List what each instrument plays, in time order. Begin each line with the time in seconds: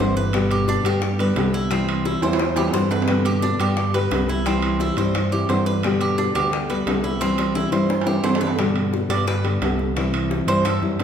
0.00 analog synth bass G1, nylon-string guitar E3 G3 C4 E4, cuban tres C5, high bongo, low bongo
0.17 cuban tres B4, high bongo
0.33 nylon-string guitar B2 D3 G3 B3 G4, high bongo, high timbale
0.51 cuban tres G4, high timbale
0.68 cuban tres D4, high bongo, low timbale
0.84 analog synth bass G2, nylon-string guitar D3 G3 B3 G4, cuban tres G4, high bongo, high timbale
1.02 muted nylon-string guitar stroke, high bongo
1.19 nylon-string guitar D3 G3 B3 G4, cuban tres B4, high bongo, high timbale
1.36 analog synth bass C2, nylon-string guitar D3 G3 B3 G4, high bongo, low bongo, high timbale, low timbale
1.54 cuban tres E4, high bongo
1.71 nylon-string guitar C3 E3 G3 C4 E4, cuban tres C4, high bongo, high timbale
1.89 high timbale
2.05 cuban tres E4, high bongo, low timbale
2.22 analog synth bass E2, nylon-string guitar E3 G3 C4 E4, cuban tres C5, high bongo, high timbale
2.33 high timbale
2.39 muted nylon-string guitar stroke, high bongo
2.45 high timbale
2.56 nylon-string guitar E3 G3 C4 E4, cuban tres G4, high bongo, high timbale
2.68 low timbale
2.73 analog synth bass G2, nylon-string guitar E3 G3 C4 E4, cuban tres C5, high bongo
2.91 cuban tres B4, low bongo, low timbale
3.02 low timbale
3.08 nylon-string guitar B2 D3 G3 B3 G4, high bongo, high timbale
3.25 cuban tres G4, high timbale
3.42 cuban tres D4, high bongo, low timbale
3.60 analog synth bass G2, nylon-string guitar D3 G3 B3 G4, cuban tres G4, high bongo, high timbale
3.77 muted nylon-string guitar stroke, high bongo
3.94 nylon-string guitar D3 G3 B3 G4, cuban tres B4, high bongo, high timbale
4.11 analog synth bass C2, nylon-string guitar D3 G3 B3 G4, high bongo, low bongo, high timbale, low timbale
4.29 cuban tres E4, high bongo
4.46 nylon-string guitar C3 E3 G3 C4 E4, cuban tres C4, high bongo, high timbale
4.62 high timbale
4.80 cuban tres E4, high bongo, low timbale
4.97 analog synth bass G2, nylon-string guitar E3 G3 C4 E4, cuban tres C5, high bongo, high timbale
5.15 muted nylon-string guitar stroke, high bongo, high timbale
5.32 nylon-string guitar E3 G3 C4 E4, cuban tres G4, high bongo
5.49 analog synth bass G2, nylon-string guitar E3 G3 C4 E4, cuban tres C5, high bongo, low bongo, high timbale, low timbale
5.66 cuban tres B4, high bongo
5.83 nylon-string guitar B2 D3 G3 B3 G4, high bongo, high timbale
6.01 cuban tres G4, high timbale
6.18 cuban tres D4, high bongo, low timbale
6.35 analog synth bass D2, nylon-string guitar D3 G3 B3 G4, cuban tres G4, high bongo, high timbale
6.53 muted nylon-string guitar stroke, high bongo
6.70 nylon-string guitar D3 G3 B3 G4, cuban tres B4, high bongo, high timbale
6.87 analog synth bass C2, nylon-string guitar D3 G3 B3 G4, high bongo, low bongo, high timbale, low timbale
7.04 cuban tres E4, high bongo
7.21 nylon-string guitar C3 E3 G3 C4 E4, cuban tres C4, high bongo, high timbale
7.38 high bongo, high timbale
7.55 cuban tres E4, low bongo, low timbale
7.72 analog synth bass G2, nylon-string guitar E3 G3 C4 E4, cuban tres C5, low bongo, high timbale
7.89 muted nylon-string guitar stroke, low bongo, high timbale
8.01 high timbale
8.06 nylon-string guitar E3 G3 C4 E4, cuban tres G4, low bongo
8.23 analog synth bass G2, nylon-string guitar E3 G3 C4 E4, cuban tres C5, low bongo, low timbale
8.35 low timbale
8.41 cuban tres B4, low bongo
8.47 low timbale
8.58 nylon-string guitar B2 D3 G3 B3 G4, high bongo, high timbale
8.76 high timbale
8.93 high bongo, low timbale
9.10 analog synth bass G2, nylon-string guitar D3 G3 B3 G4, cuban tres D5, high bongo, high timbale
9.27 cuban tres B4, muted nylon-string guitar stroke, high bongo
9.44 nylon-string guitar D3 G3 B3 G4, high bongo, high timbale
9.61 analog synth bass C2, nylon-string guitar D3 G3 B3 G4, high bongo, low bongo, high timbale, low timbale
9.79 high bongo
9.96 nylon-string guitar C3 E3 G3 C4 E4, high bongo, high timbale
10.14 high timbale
10.31 high bongo, low timbale
10.47 analog synth bass G2, nylon-string guitar E3 G3 C4 E4, cuban tres C5, high bongo, high timbale
10.65 cuban tres A4, muted nylon-string guitar stroke, high bongo, high timbale
10.82 analog synth bass F#2, nylon-string guitar E3 G3 C4 E4, high bongo
10.99 analog synth bass G2, nylon-string guitar E3 G3, high bongo, low bongo, high timbale, low timbale